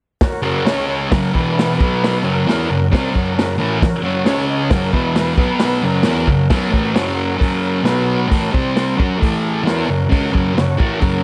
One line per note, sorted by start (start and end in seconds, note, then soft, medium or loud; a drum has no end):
0.21 0.41 F#4 loud
0.21 0.42 A#4 medium
0.21 0.42 C#5 loud
0.21 kick loud
0.21 snare loud
0.21 open hi-hat medium
0.42 0.65 F#2 medium
0.42 0.64 C#3 medium
0.42 0.65 F#3 loud
0.42 0.65 F#4 medium
0.42 0.65 A#4 medium
0.42 0.63 C#5 loud
0.65 1.10 C#3 loud
0.65 1.10 G#3 loud
0.65 0.86 C#4 loud
0.65 1.10 C#4 loud
0.65 0.86 G#4 loud
0.65 0.86 C#5 loud
0.65 snare loud
0.65 open hi-hat medium
0.87 1.08 C#4 medium
0.87 1.09 G#4 medium
0.87 1.09 C#5 medium
1.10 1.32 F#2 medium
1.10 1.33 C#3 medium
1.10 1.33 F#3 loud
1.10 1.31 C#4 medium
1.10 1.31 F#4 medium
1.10 1.31 A#4 medium
1.10 kick loud
1.10 snare loud
1.10 open hi-hat medium
1.33 1.77 E2 medium
1.33 1.77 B2 loud
1.33 1.78 E3 loud
1.33 1.74 B3 medium
1.33 1.74 E4 medium
1.33 1.75 B4 medium
1.33 kick medium
1.59 snare loud
1.59 open hi-hat medium
1.77 2.22 B2 loud
1.77 2.22 F#3 loud
1.77 2.18 B3 medium
1.77 2.23 B3 loud
1.77 2.19 F#4 medium
1.77 2.19 B4 loud
1.77 kick loud
2.04 snare loud
2.04 open hi-hat medium
2.23 2.45 F#2 medium
2.23 2.45 C#3 loud
2.23 2.45 F#3 loud
2.23 2.64 C#4 medium
2.23 2.64 F#4 medium
2.23 2.65 A#4 loud
2.46 2.67 E3 medium
2.46 2.68 B3 loud
2.46 2.68 E4 loud
2.46 snare loud
2.46 open hi-hat medium
2.66 2.87 C#3 medium
2.66 2.87 C#4 medium
2.66 2.87 F#4 medium
2.66 2.88 A#4 medium
2.70 2.87 F#2 medium
2.91 3.13 C3 medium
2.91 3.13 G3 medium
2.91 3.13 C4 loud
2.91 3.11 C#4 medium
2.91 3.11 F#4 medium
2.91 3.12 A#4 medium
2.91 kick loud
2.91 snare loud
2.95 open hi-hat medium
3.14 3.35 F#2 medium
3.14 3.35 C#3 medium
3.14 3.36 F#3 medium
3.14 3.34 C#4 medium
3.14 3.34 F#4 medium
3.14 3.34 A#4 medium
3.14 kick medium
3.36 3.54 F#2 medium
3.36 3.55 C#3 medium
3.36 3.56 C#4 loud
3.36 3.56 F#4 medium
3.36 3.57 A#4 loud
3.36 snare loud
3.36 open hi-hat medium
3.58 3.80 A2 medium
3.58 3.80 E3 loud
3.58 3.80 A3 loud
3.58 3.79 C#4 medium
3.58 3.79 F#4 medium
3.58 3.79 A#4 medium
3.82 4.01 C#4 loud
3.82 4.01 F#4 loud
3.82 4.02 A#4 loud
3.82 kick loud
3.82 snare loud
3.82 open hi-hat medium
4.03 4.24 F#2 loud
4.03 4.25 C#3 loud
4.03 4.25 F#3 loud
4.03 4.24 C#4 medium
4.03 4.24 F#4 medium
4.03 4.25 C#5 medium
4.25 4.70 C#3 loud
4.25 4.70 G#3 medium
4.25 4.45 C#4 loud
4.25 4.70 C#4 loud
4.25 4.45 G#4 loud
4.25 4.46 C#5 loud
4.25 snare loud
4.25 open hi-hat medium
4.48 4.68 C#4 medium
4.48 4.68 G#4 medium
4.48 4.69 D#5 medium
4.70 4.92 F#2 medium
4.70 4.93 C#3 medium
4.70 4.93 F#3 loud
4.70 4.90 C#4 medium
4.70 4.91 F#4 medium
4.70 4.92 A#4 medium
4.70 kick loud
4.70 snare loud
4.70 open hi-hat medium
4.91 5.37 E2 medium
4.91 5.36 B2 loud
4.91 5.37 E3 loud
4.91 5.33 B3 medium
4.91 5.34 E4 medium
4.91 5.34 B4 loud
4.91 kick medium
5.16 snare loud
5.16 open hi-hat medium
5.37 5.82 B2 medium
5.37 5.82 F#3 loud
5.37 5.78 B3 medium
5.37 5.82 B3 loud
5.37 5.78 F#4 medium
5.37 5.79 B4 medium
5.37 kick loud
5.60 snare loud
5.60 open hi-hat medium
5.82 6.04 F#2 loud
5.82 6.05 C#3 loud
5.82 6.05 F#3 loud
5.82 6.24 C#4 medium
5.82 6.24 F#4 medium
5.82 6.24 A#4 loud
6.03 6.27 E3 loud
6.03 6.27 B3 loud
6.03 6.28 E4 loud
6.03 snare loud
6.03 open hi-hat medium
6.28 6.46 F#2 medium
6.28 6.46 C#3 medium
6.28 6.48 C#4 medium
6.28 6.49 F#4 medium
6.28 6.49 A#4 medium
6.28 kick medium
6.49 6.71 B2 medium
6.49 6.71 F#3 medium
6.49 6.72 B3 loud
6.49 6.67 C#4 medium
6.49 6.67 F#4 medium
6.49 6.68 A#4 medium
6.49 kick loud
6.49 snare loud
6.49 open hi-hat medium
6.68 6.94 A2 medium
6.68 6.94 E3 loud
6.68 6.91 C#4 medium
6.68 6.91 F#4 medium
6.68 6.91 A#4 medium
6.73 6.95 A3 loud
6.73 kick medium
6.94 7.36 F#2 medium
6.94 7.37 C#3 medium
6.94 7.38 F#3 medium
6.94 7.13 C#4 loud
6.94 7.13 F#4 loud
6.94 7.15 C#5 loud
6.94 snare loud
6.94 open hi-hat medium
7.14 7.37 C#4 medium
7.14 7.36 F#4 medium
7.14 7.37 A#4 medium
7.37 7.83 F#2 medium
7.37 7.83 C#3 medium
7.37 7.83 F#3 loud
7.37 7.59 C#4 loud
7.37 7.59 F#4 medium
7.37 7.59 A#4 loud
7.37 kick loud
7.42 open hi-hat medium
7.60 7.82 C#4 medium
7.60 7.82 F#4 medium
7.60 7.82 A#4 medium
7.83 8.28 B2 loud
7.83 8.29 F#3 loud
7.83 8.04 B3 medium
7.83 8.29 B3 loud
7.83 8.04 F#4 medium
7.83 8.05 B4 medium
7.83 snare loud
7.83 open hi-hat medium
8.05 8.27 B3 medium
8.05 8.27 F#4 medium
8.05 8.28 B4 medium
8.28 8.51 A2 medium
8.28 8.51 E3 medium
8.28 8.52 A3 loud
8.28 8.50 C#4 medium
8.28 8.50 F#4 medium
8.28 8.51 A#4 medium
8.28 kick medium
8.28 open hi-hat medium
8.52 8.97 C3 medium
8.52 8.97 G3 medium
8.52 8.98 C4 loud
8.52 8.94 C4 medium
8.52 8.95 G4 medium
8.52 8.95 C5 medium
8.52 kick loud
8.76 snare loud
8.76 open hi-hat medium
8.97 9.18 F#3 medium
8.97 9.19 C#4 medium
8.97 9.18 C#4 medium
8.97 9.18 F#4 medium
8.97 9.19 F#4 loud
8.97 9.18 A#4 loud
8.97 kick loud
9.19 9.63 A2 medium
9.19 9.62 E3 medium
9.19 9.65 A3 loud
9.19 9.40 A3 loud
9.19 9.41 E4 medium
9.19 9.42 A4 loud
9.19 kick loud
9.19 open hi-hat medium
9.41 9.63 A3 medium
9.41 9.63 E4 medium
9.41 9.64 G#4 medium
9.63 9.86 E3 medium
9.63 9.88 B3 loud
9.63 9.88 E4 loud
9.67 9.86 C#4 medium
9.67 9.87 F#4 medium
9.67 9.88 A#4 loud
9.67 snare loud
9.67 open hi-hat medium
9.86 10.06 F#2 medium
9.86 10.06 C#3 medium
9.86 10.09 C#4 medium
9.86 10.09 F#4 medium
9.86 10.10 A#4 medium
10.09 10.31 C#3 loud
10.09 10.33 G#3 medium
10.09 10.33 C#4 loud
10.09 10.31 C#4 medium
10.09 10.31 F#4 medium
10.09 kick loud
10.09 open hi-hat soft
10.14 10.31 A#4 medium
10.31 10.52 F#2 medium
10.31 10.53 C#3 medium
10.31 10.56 F#3 loud
10.31 10.54 C#4 loud
10.31 10.54 F#4 medium
10.31 10.54 A#4 loud
10.31 kick medium
10.54 10.73 F#2 medium
10.54 10.74 C#3 medium
10.58 10.78 C#4 loud
10.58 10.78 F#4 loud
10.58 10.79 C#5 loud
10.58 snare loud
10.58 open hi-hat medium
10.77 11.00 A2 medium
10.77 11.01 E3 medium
10.77 11.01 A3 medium
10.77 11.00 C#4 medium
10.77 11.00 F#4 medium
10.77 11.00 A#4 loud
10.77 kick loud
11.00 11.23 F#2 medium
11.00 11.23 C#3 medium
11.00 11.23 F#3 medium
11.00 11.23 C#4 loud
11.00 11.23 F#4 medium
11.00 11.23 A#4 loud
11.00 kick loud
11.00 open hi-hat medium